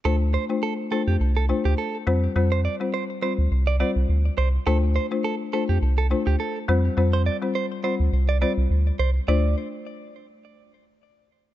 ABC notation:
X:1
M:4/4
L:1/16
Q:"Swing 16ths" 1/4=104
K:F
V:1 name="Clean electric guitar"
A z c z A z A G z A z G A2 z2 | z c d z c z c z2 d d z3 c z | A z c z A z A G z A z G A2 z2 | z c d z c z c z2 d d z3 c z |
d2 z12 z2 |]
V:2 name="Marimba"
[A,DFc]3 [A,DFc]3 [A,DFc]2 z2 [A,DFc] z3 [G,CFc]2 | [G,CFc]3 [G,CFc]3 [G,CFc]2 z2 [G,CFc] z4 z | [A,DFc]3 [A,DFc]3 [A,DFc]2 z2 [A,DFc] z3 [G,CFc]2 | [G,CFc]3 [G,CFc]3 [G,CFc]2 z2 [G,CFc] z4 z |
[A,DFc]2 z12 z2 |]
V:3 name="Analog synth bass" clef=bass
D,,3 z4 F,, C,,3 D,, z2 F,,2 | F,,3 z4 D,, C,,3 C,, D,,2 C,,2 | D,,3 z4 F,, C,,3 D,, z2 F,,2 | F,,3 z4 D,, C,,3 C,, D,,2 C,,2 |
D,,2 z12 z2 |]